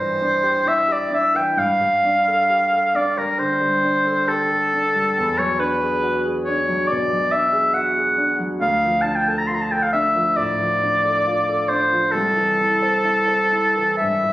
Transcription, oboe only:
0.00 0.70 C5 medium
0.68 0.93 E5 medium
0.92 1.13 D5 medium
1.14 1.38 E5 medium
1.37 1.60 G5 medium
1.59 2.97 F5 medium
2.96 3.19 D5 medium
3.18 3.40 A#4 medium
3.38 4.29 C5 medium
4.28 5.40 A4 medium
5.38 5.61 C#5 medium
5.59 6.28 B4 medium
6.45 6.89 C#5 medium
6.87 7.33 D5 medium
7.32 7.76 E5 medium
7.74 8.35 F#5 medium
8.61 9.03 F5 medium
9.02 9.17 A5 medium
9.16 9.31 G5 medium
9.29 9.40 A5 medium
9.38 9.49 A#5 medium
9.47 9.56 C6 medium
9.55 9.63 A#5 medium
9.61 9.73 A5 medium
9.72 9.84 G5 medium
9.83 9.92 F5 medium
9.93 10.38 E5 medium
10.36 11.70 D5 medium
11.69 12.13 C5 medium
12.11 13.97 A4 medium
13.97 14.33 E5 medium

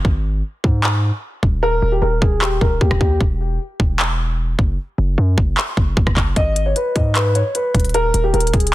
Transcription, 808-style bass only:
0.05 0.43 G#1 loud
0.64 1.11 G#2 loud
1.43 1.81 D#1 loud
1.82 2.01 D#1 loud
2.02 2.21 D#1 loud
2.22 2.60 D#1 loud
2.61 2.80 D#1 loud
2.81 2.90 D#2 loud
2.91 3.00 D#1 loud
3.01 3.20 D#2 loud
3.21 3.58 E1 loud
3.80 4.56 E1 loud
4.59 4.78 F#1 loud
4.98 5.17 F#1 loud
5.18 5.37 F#2 loud
5.38 5.57 F#1 loud
5.77 5.96 F#1 loud
5.97 6.06 F#1 loud
6.07 6.16 F#1 loud
6.17 6.36 F#1 loud
6.36 6.74 G#1 loud
6.96 7.43 G#2 loud
7.75 8.12 D#1 loud
8.14 8.33 D#1 loud
8.34 8.53 D#1 loud
8.54 8.74 D#1 loud

